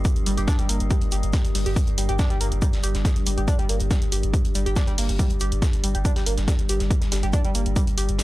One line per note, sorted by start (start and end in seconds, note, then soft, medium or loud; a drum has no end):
0.00 8.23 G2 medium
0.00 8.23 G3 medium
0.05 kick loud
0.05 closed hi-hat medium
0.05 shaker loud
0.16 closed hi-hat soft
0.26 0.37 G1 loud
0.26 0.30 G3 medium
0.26 open hi-hat loud
0.26 shaker medium
0.37 0.48 G1 medium
0.37 0.41 G4 medium
0.37 closed hi-hat soft
0.37 closed hi-hat medium
0.47 0.54 D4 loud
0.47 kick loud
0.47 snare loud
0.47 closed hi-hat medium
0.47 shaker medium
0.59 0.65 G3 loud
0.59 closed hi-hat medium
0.69 0.80 G1 loud
0.69 0.75 A#3 medium
0.69 open hi-hat loud
0.69 shaker medium
0.80 0.90 G1 medium
0.80 closed hi-hat medium
0.90 0.94 G3 medium
0.90 kick loud
0.90 closed hi-hat medium
0.90 shaker medium
1.01 closed hi-hat soft
1.11 1.23 G1 loud
1.11 1.16 G4 medium
1.11 open hi-hat loud
1.11 shaker medium
1.23 1.33 G1 medium
1.23 closed hi-hat soft
1.33 kick loud
1.33 snare loud
1.33 open hi-hat medium
1.33 shaker medium
1.45 closed hi-hat medium
1.45 closed hi-hat soft
1.55 1.65 G1 loud
1.55 1.59 G3 medium
1.55 open hi-hat medium
1.55 open hi-hat loud
1.66 1.76 G1 medium
1.66 1.69 G4 medium
1.66 closed hi-hat medium
1.76 kick loud
1.76 closed hi-hat medium
1.76 shaker medium
1.87 closed hi-hat soft
1.98 2.08 G1 loud
1.98 2.01 G3 medium
1.98 open hi-hat loud
1.98 shaker medium
2.09 2.19 G1 medium
2.09 2.12 G4 medium
2.09 closed hi-hat soft
2.19 2.25 D4 loud
2.19 kick loud
2.19 snare loud
2.19 closed hi-hat medium
2.19 shaker medium
2.30 2.36 G3 loud
2.30 closed hi-hat medium
2.41 2.51 G1 loud
2.41 2.47 A#3 medium
2.41 open hi-hat loud
2.41 shaker medium
2.52 2.62 G1 medium
2.52 closed hi-hat soft
2.62 2.66 G3 medium
2.62 kick loud
2.62 closed hi-hat medium
2.62 shaker medium
2.73 snare medium
2.73 open hi-hat medium
2.83 2.94 G1 loud
2.83 2.87 G4 medium
2.83 open hi-hat loud
2.83 shaker medium
2.94 3.05 G1 medium
2.94 snare medium
2.94 closed hi-hat soft
3.05 kick loud
3.05 snare loud
3.05 closed hi-hat medium
3.05 shaker medium
3.16 closed hi-hat medium
3.26 3.37 G1 loud
3.26 3.30 G3 medium
3.26 open hi-hat loud
3.26 shaker medium
3.37 3.48 G1 medium
3.37 3.41 G4 medium
3.37 closed hi-hat medium
3.48 3.54 D4 loud
3.48 kick loud
3.48 closed hi-hat medium
3.48 shaker medium
3.59 3.65 G3 loud
3.59 closed hi-hat soft
3.69 3.80 G1 loud
3.69 3.75 A#3 medium
3.69 open hi-hat loud
3.69 shaker medium
3.80 3.90 G1 medium
3.80 closed hi-hat soft
3.80 closed hi-hat medium
3.90 3.94 G3 medium
3.90 kick loud
3.90 snare loud
3.90 closed hi-hat medium
3.90 shaker medium
4.02 closed hi-hat medium
4.12 4.23 G1 loud
4.12 4.16 G4 medium
4.12 open hi-hat loud
4.12 shaker medium
4.23 4.33 G1 medium
4.23 closed hi-hat soft
4.33 kick loud
4.33 closed hi-hat medium
4.33 shaker medium
4.45 closed hi-hat soft
4.55 4.65 G1 loud
4.55 4.59 G3 medium
4.55 open hi-hat loud
4.55 shaker medium
4.66 4.76 G1 medium
4.66 4.69 G4 medium
4.66 closed hi-hat soft
4.76 4.82 D4 loud
4.76 kick loud
4.76 snare loud
4.76 closed hi-hat medium
4.76 shaker medium
4.87 4.93 G3 loud
4.87 closed hi-hat soft
4.98 5.08 G1 loud
4.98 5.04 A#3 medium
4.98 open hi-hat loud
4.98 open hi-hat medium
5.09 5.19 G1 medium
5.09 closed hi-hat soft
5.19 5.23 G3 medium
5.19 kick loud
5.19 closed hi-hat medium
5.19 shaker medium
5.30 closed hi-hat soft
5.40 5.51 G1 loud
5.40 5.44 G4 medium
5.40 open hi-hat loud
5.40 shaker medium
5.52 5.62 G1 medium
5.52 closed hi-hat medium
5.62 kick loud
5.62 snare loud
5.62 closed hi-hat medium
5.62 shaker medium
5.73 closed hi-hat medium
5.83 5.94 G1 loud
5.83 5.87 G3 medium
5.83 open hi-hat loud
5.83 shaker medium
5.95 6.05 G1 medium
5.95 5.98 G4 medium
5.95 closed hi-hat medium
6.05 6.11 D4 loud
6.05 kick loud
6.05 closed hi-hat medium
6.05 shaker medium
6.16 6.22 G3 loud
6.16 snare soft
6.16 open hi-hat medium
6.26 6.37 G1 loud
6.26 6.33 A#3 medium
6.26 open hi-hat loud
6.26 shaker medium
6.37 6.48 G1 medium
6.37 snare medium
6.37 closed hi-hat medium
6.48 6.51 G3 medium
6.48 kick loud
6.48 snare loud
6.48 closed hi-hat medium
6.48 shaker medium
6.59 closed hi-hat soft
6.69 6.80 G1 loud
6.69 6.73 G4 medium
6.69 open hi-hat loud
6.69 shaker medium
6.80 6.90 G1 medium
6.80 snare soft
6.80 closed hi-hat medium
6.91 kick loud
6.91 closed hi-hat medium
6.91 shaker medium
7.01 snare soft
7.01 closed hi-hat medium
7.12 7.22 G1 loud
7.12 7.16 G3 medium
7.12 snare loud
7.12 open hi-hat loud
7.12 shaker medium
7.23 7.33 G1 medium
7.23 7.27 G4 medium
7.23 closed hi-hat medium
7.33 7.40 D4 loud
7.33 kick loud
7.33 closed hi-hat medium
7.33 shaker medium
7.45 7.50 G3 loud
7.45 closed hi-hat medium
7.55 7.65 G1 loud
7.55 7.61 A#3 medium
7.55 open hi-hat loud
7.55 shaker medium
7.66 7.76 G1 medium
7.66 closed hi-hat medium
7.76 7.80 G3 medium
7.76 kick loud
7.76 closed hi-hat medium
7.76 shaker medium
7.87 closed hi-hat medium
7.87 closed hi-hat soft
7.98 8.08 G1 loud
7.98 8.01 G4 medium
7.98 open hi-hat loud
7.98 shaker medium
8.09 8.19 G1 medium
8.09 closed hi-hat medium
8.19 snare loud
8.19 open hi-hat medium
8.19 shaker medium